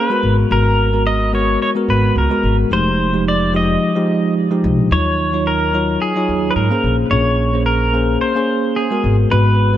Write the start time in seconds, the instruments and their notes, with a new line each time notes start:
Already playing: pedal steel guitar B4
0.10 tine electric piano G#3 B3 F#4 A#4
0.23 upright bass G#1
0.50 upright bass G#1, tine electric piano G#3 B3 F#4 A#4, pedal steel guitar A#4
0.92 tine electric piano G#3 B3 F#4 A#4
1.07 pedal steel guitar D#5
1.33 tine electric piano G#3 B3 F#4 A#4, pedal steel guitar C#5
1.62 pedal steel guitar C#5
1.75 tine electric piano G#3 B3 F#4 A#4
1.88 upright bass G#1, pedal steel guitar B4
2.16 upright bass C#2, pedal steel guitar A#4
2.30 tine electric piano G#3 B3 F#4 A#4
2.43 upright bass G#1
2.70 upright bass F1, tine electric piano F3 G#3 D#4 G4, pedal steel guitar C5
3.12 tine electric piano F3 G#3 D#4 G4
3.28 pedal steel guitar D5
3.53 tine electric piano F3 G#3 D#4 G4, pedal steel guitar D#5
3.95 tine electric piano F3 G#3 D#4 G4
4.50 tine electric piano F3 G#3 D#4 G4
4.64 upright bass C2
4.78 upright bass A#1
4.91 upright bass D#2, tine electric piano F#3 D#4 F4 C#5, pedal steel guitar C#5
5.33 tine electric piano F#3 D#4 F4 C#5
5.47 pedal steel guitar A#4
5.73 tine electric piano F#3 D#4 F4 C#5
6.02 pedal steel guitar G#4
6.15 tine electric piano F#3 D#4 F4 C#5
6.29 upright bass D#2
6.51 pedal steel guitar B4
6.56 upright bass G#2, pedal steel guitar A#4
6.71 tine electric piano A#3 C#4 G#4 C5
6.84 upright bass A#1
7.11 upright bass A#1, tine electric piano A#3 C#4 G#4 C#5, pedal steel guitar C#5
7.53 tine electric piano A#3 C#4 G#4 C5
7.66 pedal steel guitar A#4
7.93 tine electric piano A#3 C#4 G#4 C5
8.21 pedal steel guitar C5
8.35 tine electric piano A#3 C#4 G#4 C5
8.76 pedal steel guitar G#4
8.91 tine electric piano G#3 B3 F#4 A#4
9.04 upright bass G#1
9.31 upright bass G#1, tine electric piano G#3 B3 F#4 B4, pedal steel guitar B4
9.73 tine electric piano G#3 B3